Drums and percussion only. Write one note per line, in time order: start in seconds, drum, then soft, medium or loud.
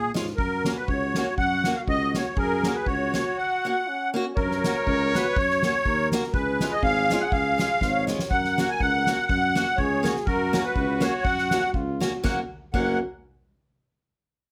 0.15 snare medium
0.27 snare soft
0.38 kick medium
0.65 snare medium
0.88 kick medium
1.15 snare medium
1.38 kick medium
1.64 snare medium
1.88 kick medium
2.14 snare medium
2.37 kick medium
2.63 snare medium
2.86 kick medium
3.14 snare medium
4.37 kick medium
4.37 crash medium
4.51 snare soft
4.64 snare medium
4.64 hi-hat pedal soft
4.87 kick medium
5.15 snare medium
5.15 hi-hat pedal soft
5.36 kick medium
5.50 snare soft
5.63 snare medium
5.63 hi-hat pedal soft
5.85 kick medium
6.12 snare medium
6.12 hi-hat pedal soft
6.23 snare soft
6.34 kick medium
6.60 snare medium
6.60 hi-hat pedal soft
6.83 kick medium
7.10 snare medium
7.10 hi-hat pedal soft
7.32 kick medium
7.59 snare medium
7.59 hi-hat pedal soft
7.81 kick medium
7.81 snare soft
8.08 snare medium
8.08 hi-hat pedal soft
8.19 snare medium
8.31 kick medium
8.44 snare soft
8.58 snare medium
8.58 hi-hat pedal soft
8.80 kick medium
9.06 snare medium
9.06 hi-hat pedal soft
9.29 kick medium
9.56 snare medium
9.56 hi-hat pedal soft
9.78 kick medium
10.05 snare medium
10.05 hi-hat pedal soft
10.16 snare soft
10.27 kick medium
10.54 snare medium
10.54 hi-hat pedal soft
10.76 kick medium
11.01 snare medium
11.01 hi-hat pedal soft
11.25 kick medium
11.38 snare soft
11.51 snare medium
11.51 hi-hat pedal soft
11.74 kick medium
12.01 snare medium
12.01 hi-hat pedal soft
12.24 kick medium
12.24 snare medium
12.73 kick medium
12.73 crash medium